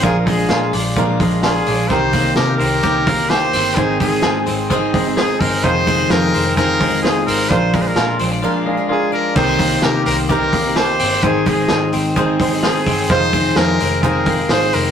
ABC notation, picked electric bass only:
X:1
M:4/4
L:1/8
Q:1/4=129
K:Cm
V:1 name="Picked electric bass" clef=bass
B,,,2 B,, B,,, B,, B,,,2 B,,, | C,,2 C, C,,4 G,,, | A,,,2 A,, A,,,4 G,,, | F,,,2 F,, F,,,4 A,,, |
B,,,2 B,, B,,, z4 | C,,2 C, C,,4 G,,, | A,,,2 A,, A,,,4 G,,, | F,,,2 F,, F,,,3 A,,, F,,, |]